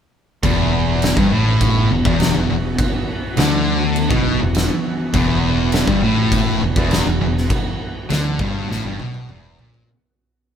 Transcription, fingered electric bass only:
0.43 E1
1.17 G1
1.32 A1
1.90 E1
2.05 E1
2.36 E1
2.49 E1
3.38 D2
4.11 B1
4.41 E1
5.14 E1
5.87 G1
6.02 A1
6.61 E1
6.76 E1
7.06 E1
7.21 E1
8.11 D2
8.40 G1
8.70 A1
8.84 G1
8.99 B1
9.29 E1
9.58 A#1

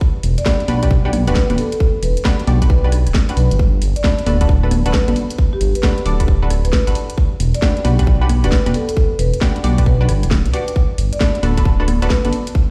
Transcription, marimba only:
0.38 D5
1.28 B4
1.36 B4
1.58 A4
1.72 A4
2.03 B4
2.70 B4
3.37 B4
3.96 D5
4.86 B4
4.94 B4
5.53 G4
5.75 B4
5.83 B4
6.65 B4
6.73 B4
7.55 D5
8.44 B4
8.52 B4
8.74 A4
8.89 A4
9.19 B4
9.86 B4
10.53 B4
11.13 D5
12.02 B4
12.10 B4

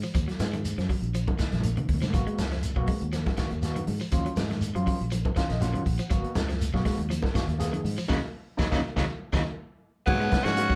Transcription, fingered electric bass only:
0.15 D#2
0.40 G#2
0.78 F#2
1.02 A#1
1.53 A#1
1.89 D#2
2.14 G#1
2.38 C#2
2.76 B1
3.02 D#2
3.52 D#2
3.88 G#2
4.13 D#2
4.37 G#2
4.75 F#2
5.01 A#1
5.50 A#1
5.86 A#1
6.11 G#1
6.36 C#2
6.74 B1
6.98 D#2
7.48 D#2
7.84 G#2
8.10 D#2
8.59 D#2
8.72 D#2
8.97 D#2
9.33 D#2
10.08 G#2
10.45 G#2

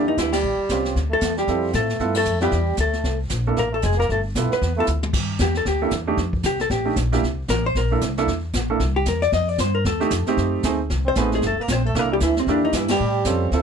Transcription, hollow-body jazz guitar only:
0.08 D#4
0.18 E4
0.33 G4
1.13 A4
1.39 G4
1.75 A4
2.17 A4
2.43 G4
2.81 A4
3.59 A#4
3.74 A4
3.86 G#4
4.00 A#4
4.12 A4
4.53 B4
4.80 A4
5.42 G4
5.57 A4
5.68 G4
6.46 G4
6.61 A4
6.71 G4
7.50 A#4
7.66 C5
7.77 A#4
8.96 G4
9.08 A#4
9.22 D5
9.34 D#5
9.49 D5
9.60 C5
9.75 A#4
9.87 A4
11.08 C5
11.18 B4
11.35 G#4
11.47 A4
11.61 A#4
11.72 C5
11.86 A4
11.99 A#4
12.13 G4
12.23 E4
12.39 C4
12.51 D4
12.65 D#4
12.76 E4
12.91 G4

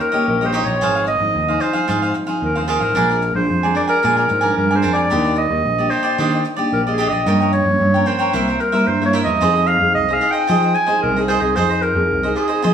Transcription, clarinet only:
0.01 A#4
0.28 A#4
0.46 C5
0.64 C#5
1.08 D#5
1.61 C5
2.44 A#4
2.69 A#4
3.36 C5
3.76 D5
3.89 A#4
4.57 A#4
4.76 C5
4.93 D5
5.38 D#5
5.90 C5
6.73 A#4
6.91 G#4
7.09 D#5
7.53 C#5
8.06 C5
8.61 A#4
8.87 C5
9.06 C#5
9.24 D#5
9.67 F5
9.95 D#5
10.13 F5
10.31 G5
10.75 G#5
11.02 A#4
11.28 C5
11.41 G#4
11.56 C5
11.82 A#4
12.36 G#4

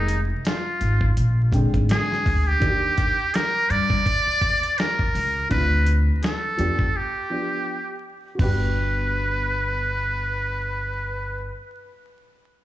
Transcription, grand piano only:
Already playing: D#3 G#3 A#3 G4
1.52 D3 G#3 C4 G5
2.60 D#3 A#3 D4 F#4
2.69 G4
5.50 C4 D4 E4
5.58 F4
6.57 F3 B3 D4 G4
7.30 F3 B3 D4 G4
8.35 B3 F#4
8.41 D4 G4

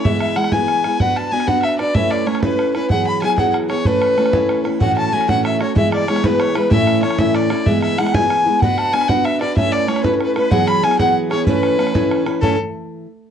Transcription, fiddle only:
0.05 E5
0.21 E5
0.37 F#5
0.52 G#5
1.01 F#5
1.17 A5
1.32 G#5
1.48 F#5
1.62 E5
1.79 D5
1.95 E5
2.11 D5
2.27 C#5
2.42 B4
2.75 B4
2.90 F#5
3.07 B5
3.22 G#5
3.38 F#5
3.70 C#5
3.86 B4
4.81 F#5
4.97 A5
5.13 G#5
5.30 F#5
5.45 E5
5.61 C#5
5.77 E5
5.93 D5
6.09 C#5
6.26 B4
6.41 C#5
6.56 B4
6.72 E5
7.03 C#5
7.19 E5
7.36 D5
7.67 E5
7.83 E5
7.98 F#5
8.15 G#5
8.62 F#5
8.93 G#5
9.09 F#5
9.25 E5
9.41 D5
9.57 E5
9.72 D5
9.88 C#5
10.04 B4
10.25 B4
10.36 B4
10.51 F#5
10.68 B5
10.84 G#5
10.99 F#5
11.31 C#5
11.46 B4
12.42 A4

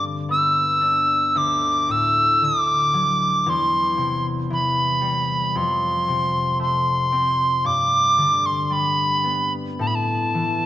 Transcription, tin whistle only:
0.31 E6
1.29 E6
1.37 D6
1.91 E6
2.45 D6
3.50 C6
4.53 B5
5.57 C6
6.62 C6
7.66 D6
8.46 C6
8.65 C6
8.73 B5
9.81 A5
9.87 B5
9.95 A5

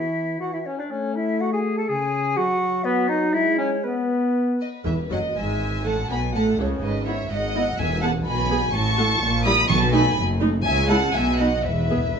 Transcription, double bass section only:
4.86 E1
5.12 F#1
5.36 G#1
5.86 A1
6.11 B1
6.35 A1
6.59 C#2
6.83 G#1
7.31 G#1
7.80 E1
8.27 B1
8.74 A1
9.22 A#1
9.70 B1
10.17 F#1
10.65 C#2
11.14 B1
11.65 E1

